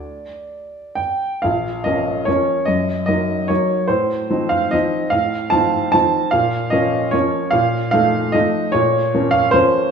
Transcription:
<<
  \new Staff \with { instrumentName = "Upright piano" } { \time 3/4 \key g \dorian \tempo 4 = 147 d''2 g''4 | \key bes \minor f''4 ees''4 des''4 | ees''4 ees''4 des''4 | c''4. f''8 ees''4 |
f''4 a''4 a''4 | f''4 ees''4 des''4 | f''4 f''4 ees''4 | des''4. f''8 c''4 | }
  \new Staff \with { instrumentName = "Upright piano" } { \time 3/4 \key g \dorian r2. | \key bes \minor bes,,4 <f bes des'>4 <f bes des'>4 | ges,4 <ges bes ees'>4 <ges bes ees'>4 | a,4 <f c' ees'>4 <f c' ees'>4 |
a,4 <f c' ees'>4 <f c' ees'>4 | bes,4 <f bes des'>4 <f bes des'>4 | bes,4 <f a ees'>4 <f a ees'>4 | bes,4 <f bes des'>4 <f bes des'>4 | }
>>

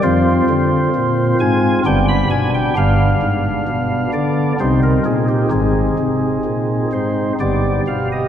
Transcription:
<<
  \new Staff \with { instrumentName = "Pipe organ" } { \time 3/4 \key g \phrygian \tempo 4 = 65 << { c''4. aes''8 g''16 b''16 aes''16 g''16 | f''4. d''8 c''16 bes'16 aes'16 g'16 | aes'4. c''8 d''8 f''16 ees''16 | } \\ { <c' f'>2 <b d'>4 | <b d'>2 <c' ees'>4 | <c' ees'>2 <b g'>4 | } >> }
  \new Staff \with { instrumentName = "Pipe organ" } { \clef bass \time 3/4 \key g \phrygian <f, f>8 d8 bes,8 aes,8 <g,, g,>8 b,8 | <g,, g,>8 aes,8 b,8 d8 <c, c>8 bes,8 | <aes,, aes,>8 c8 bes,8 aes,8 <g,, g,>8 b,8 | }
>>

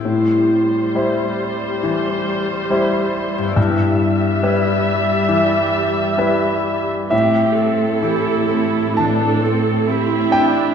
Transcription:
<<
  \new Staff \with { instrumentName = "Grand piano" } { \time 4/4 \key a \minor \tempo 4 = 67 r1 | r1 | e''2 a''4. g''8 | }
  \new Staff \with { instrumentName = "Grand piano" } { \clef bass \time 4/4 \key a \minor a,4 <g e' c''>4 e4 <g e' c''>4 | g,4 <g e' b'>4 e4 <g e' b'>4 | a,4 e2. | }
  \new Staff \with { instrumentName = "Viola section" } { \time 4/4 \key a \minor << { g1 | g1 | g'8 a'4. a'4 e'4 | } \\ { c''1 | e''1 | c'4 e'8 e'8 d'8 c'8 c'8 d'8 | } >> }
  \new Staff \with { instrumentName = "Harp" } { \time 4/4 \key a \minor << { <a, c' e' g'>1 | <g, b e' g'>1~ | <g, b e' g'>1 | } \\ { r1 | r1 | a,8 c'8 g'8 c'8 e8 c'8 g'8 c'8 | } >> }
  \new Staff \with { instrumentName = "Cello section" } { \clef bass \time 4/4 \key a \minor r1 | r1 | a,1 | }
>>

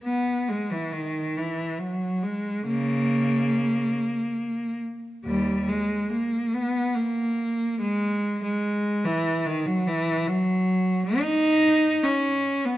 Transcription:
\new Staff \with { instrumentName = "Cello" } { \clef bass \time 3/4 \key gis \minor \tempo 4 = 71 << { b8 gis16 e16 dis8 e8 fis8 gis8 | ais2~ ais8 r8 | g8 gis8 ais8 b8 ais4 | gis8. gis8. e8 dis16 fis16 e8 |
fis4 dis'4 cis'8. b16 | } \\ { r2. | cis4. r4. | dis,8 r2 r8 | r2. |
r2. | } >> }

